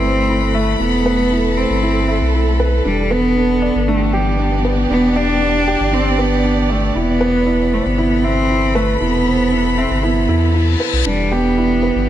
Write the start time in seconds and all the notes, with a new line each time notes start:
Already playing: G1 A3 C4 E4 G4 A4 B4 E5 B5
0.03 C5
0.29 E4
0.54 A3 E5
0.80 E1 B3 E4
1.06 B4
1.32 E4
1.57 C4 C5
1.70 G1
1.82 E4
2.08 E5
2.21 B1
2.34 E4
2.60 B4
2.85 E1 E3 G3 D4
3.03 B3
3.11 B3 B4
3.37 D4
3.62 D5
3.75 G1
3.88 A3 D4
3.98 G4
4.13 G3 G4
4.20 D5
4.39 D4
4.65 B4
4.90 E1 B3 D4
5.16 D4 D5
5.41 D4
5.68 G4
5.80 G1
5.93 C4 D4
6.18 B3 B4
6.44 D4
6.70 A3 D5
6.95 E1 C3 B3 E4
7.21 B4
7.27 A4 B5
7.47 E4
7.72 A3 C5
7.86 G1 B3
7.98 E4
8.24 C4 E5
8.50 E4
8.75 A3 B4
9.01 E1 B3 E4
9.27 C5
9.52 E4
9.78 C4 E5
9.91 G1
10.03 B3 E4, reverse cymbal
10.29 E2 E4
10.55 E4
10.80 B4
10.93 B1
11.06 E1 E3 G3 D4
11.20 B3
11.31 B3 G4
11.57 E4 D5
11.83 B4
11.96 G1